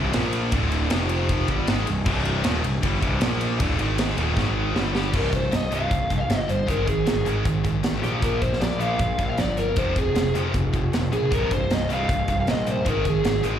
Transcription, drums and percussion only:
0.13 snare loud
0.13 ride loud
0.33 ride medium
0.52 kick loud
0.52 ride loud
0.72 ride medium
0.90 snare loud
0.90 ride loud
1.09 ride medium
1.29 kick medium
1.29 ride medium
1.48 kick medium
1.48 ride medium
1.67 snare loud
1.67 ride medium
1.87 ride medium
2.06 kick loud
2.06 crash loud
2.25 ride medium
2.44 snare loud
2.44 ride loud
2.64 ride medium
2.83 kick medium
2.83 ride medium
3.02 kick medium
3.02 ride medium
3.21 snare loud
3.21 ride medium
3.41 ride medium
3.60 kick loud
3.60 ride loud
3.79 ride medium
3.98 snare loud
3.98 ride loud
4.18 ride medium
4.37 kick medium
4.37 snare medium
4.76 snare medium
4.95 snare medium
5.14 kick loud
5.14 crash loud
5.33 kick medium
5.33 closed hi-hat medium
5.52 snare loud
5.52 closed hi-hat medium
5.72 closed hi-hat medium
5.91 kick loud
5.91 closed hi-hat medium
6.10 kick medium
6.10 closed hi-hat medium
6.30 snare loud
6.30 closed hi-hat medium
6.49 closed hi-hat medium
6.68 kick loud
6.68 closed hi-hat medium
6.88 kick medium
6.88 closed hi-hat medium
7.07 snare loud
7.07 closed hi-hat medium
7.26 closed hi-hat medium
7.45 kick loud
7.45 closed hi-hat medium
7.65 kick medium
7.65 closed hi-hat medium
7.84 snare loud
7.84 closed hi-hat medium
8.03 closed hi-hat soft
8.22 kick loud
8.22 closed hi-hat medium
8.42 kick medium
8.42 closed hi-hat medium
8.53 snare soft
8.61 snare loud
8.61 closed hi-hat medium
8.80 closed hi-hat medium
8.99 kick loud
8.99 closed hi-hat medium
9.19 kick medium
9.19 closed hi-hat medium
9.38 snare medium
9.38 closed hi-hat medium
9.57 closed hi-hat medium
9.76 kick loud
9.76 closed hi-hat medium
9.96 kick medium
9.96 closed hi-hat medium
10.16 snare loud
10.16 closed hi-hat medium
10.35 closed hi-hat medium
10.54 kick loud
10.54 closed hi-hat medium
10.74 kick medium
10.74 closed hi-hat medium
10.93 snare loud
10.93 closed hi-hat medium
11.13 closed hi-hat medium
11.32 kick loud
11.32 closed hi-hat medium
11.51 kick medium
11.51 closed hi-hat medium
11.70 snare loud
11.70 closed hi-hat medium
11.90 closed hi-hat medium
12.09 kick loud
12.09 closed hi-hat medium
12.28 kick medium
12.28 closed hi-hat medium
12.47 snare loud
12.47 closed hi-hat medium
12.67 closed hi-hat medium
12.86 kick loud
12.86 closed hi-hat medium
13.05 kick medium
13.05 closed hi-hat medium
13.25 snare loud
13.25 closed hi-hat medium
13.44 closed hi-hat medium

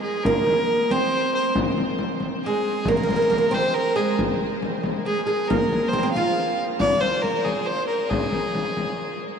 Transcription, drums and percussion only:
0.25 frame drum medium
0.47 frame drum medium
0.90 frame drum medium
1.55 frame drum medium
1.78 frame drum medium
1.99 frame drum medium
2.20 frame drum medium
2.85 frame drum medium
3.09 frame drum medium
3.32 frame drum medium
3.53 frame drum medium
4.19 frame drum medium
4.62 frame drum medium
4.83 frame drum medium
5.50 frame drum medium
5.72 frame drum medium
5.93 frame drum medium
6.15 frame drum medium
6.80 frame drum medium
7.03 frame drum medium
7.24 frame drum medium
7.46 frame drum medium
8.11 frame drum medium
8.32 frame drum medium
8.55 frame drum medium
8.77 frame drum medium

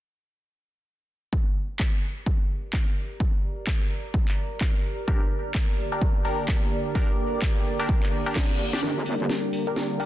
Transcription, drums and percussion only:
1.33 kick loud
1.80 kick medium
1.80 clap loud
2.26 kick loud
2.73 kick medium
2.73 clap loud
3.20 kick loud
3.67 kick loud
3.67 clap loud
4.14 kick loud
4.28 clap soft
4.61 kick loud
4.61 clap loud
5.08 kick loud
5.55 kick loud
5.55 clap loud
6.02 kick loud
6.48 kick loud
6.48 clap loud
6.95 kick loud
7.42 kick loud
7.42 clap loud
7.89 kick loud
8.03 clap soft
8.36 kick loud
8.36 snare loud
8.36 clap loud
8.73 snare medium
8.83 snare soft
8.83 closed hi-hat medium
9.06 open hi-hat loud
9.20 closed hi-hat soft
9.29 snare soft
9.29 closed hi-hat medium
9.53 open hi-hat medium
9.67 closed hi-hat medium
9.76 snare soft
9.76 closed hi-hat medium
10.00 open hi-hat loud

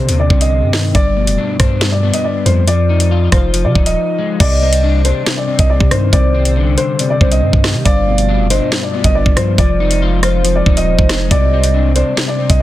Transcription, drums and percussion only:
0.09 closed hi-hat medium
0.30 kick medium
0.41 closed hi-hat medium
0.73 snare loud
0.73 open hi-hat medium
0.95 kick loud
0.95 closed hi-hat medium
1.27 closed hi-hat medium
1.60 kick loud
1.60 cross-stick medium
1.60 closed hi-hat medium
1.81 snare loud
1.81 closed hi-hat medium
2.14 closed hi-hat medium
2.46 closed hi-hat medium
2.68 closed hi-hat medium
3.00 closed hi-hat medium
3.32 kick loud
3.32 cross-stick medium
3.32 closed hi-hat medium
3.54 closed hi-hat medium
3.75 kick medium
3.86 closed hi-hat medium
4.40 kick loud
4.40 closed hi-hat medium
4.40 crash loud
4.73 closed hi-hat medium
5.05 closed hi-hat medium
5.26 snare loud
5.26 closed hi-hat medium
5.59 kick loud
5.59 closed hi-hat medium
5.80 kick loud
5.91 cross-stick loud
5.91 closed hi-hat medium
6.13 kick loud
6.13 closed hi-hat medium
6.45 closed hi-hat medium
6.78 closed hi-hat medium
6.99 closed hi-hat medium
7.21 kick medium
7.32 closed hi-hat medium
7.53 kick loud
7.64 cross-stick medium
7.64 snare loud
7.64 open hi-hat medium
7.85 kick loud
7.85 closed hi-hat medium
8.18 closed hi-hat medium
8.50 closed hi-hat medium
8.72 snare loud
8.72 closed hi-hat medium
9.04 kick loud
9.04 closed hi-hat medium
9.26 kick loud
9.37 cross-stick loud
9.37 closed hi-hat medium
9.58 kick loud
9.58 closed hi-hat medium
9.91 closed hi-hat medium
10.23 cross-stick loud
10.23 closed hi-hat medium
10.45 closed hi-hat medium
10.66 kick medium
10.77 closed hi-hat medium
10.99 kick loud
11.09 cross-stick loud
11.09 snare loud
11.09 closed hi-hat medium
11.31 kick loud
11.31 closed hi-hat medium
11.63 closed hi-hat medium
11.96 closed hi-hat medium
12.17 snare loud
12.17 closed hi-hat medium
12.50 kick loud
12.50 closed hi-hat medium

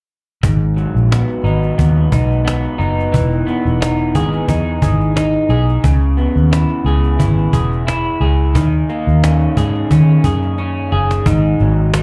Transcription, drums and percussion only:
0.43 cajon bass medium
0.61 cajon slap soft
0.78 cajon slap soft
0.97 cajon slap soft
1.12 cajon slap medium
1.30 cajon slap soft
1.46 cajon slap soft
1.63 cajon slap soft
1.79 cajon bass medium
1.98 cajon slap soft
2.12 cajon bass medium
2.32 cajon slap soft
2.48 cajon slap medium
2.65 cajon slap soft
2.81 cajon slap soft
3.00 cajon slap soft
3.14 cajon bass medium
3.33 cajon slap soft
3.48 cajon slap soft
3.67 cajon slap soft
3.82 cajon slap loud
4.00 cajon slap soft
4.15 cajon bass medium
4.33 cajon slap soft
4.48 cajon bass medium
4.82 cajon bass medium
5.01 cajon slap soft
5.17 cajon slap loud
5.35 cajon slap soft
5.49 cajon slap soft
5.69 cajon slap soft
5.84 cajon bass medium
6.03 cajon slap soft
6.18 cajon slap soft
6.37 cajon slap soft
6.53 cajon slap medium
6.70 cajon slap soft
6.87 cajon slap soft
7.04 cajon slap soft
7.20 cajon bass medium
7.38 cajon slap soft
7.53 cajon bass medium
7.72 cajon slap soft
7.88 cajon slap medium
8.06 cajon slap soft
8.22 cajon slap soft
8.41 cajon slap soft
8.55 cajon bass loud
8.89 cajon slap soft
9.08 cajon slap soft
9.24 cajon slap medium
9.42 cajon slap soft
9.57 cajon bass medium
9.76 cajon slap soft
9.91 cajon bass medium
10.09 cajon slap soft
10.24 cajon bass medium
10.43 cajon slap soft
10.58 cajon slap soft
10.77 cajon slap soft
10.92 cajon slap soft
11.11 cajon slap medium
11.26 cajon bass loud
11.59 cajon slap soft
11.94 cajon slap medium

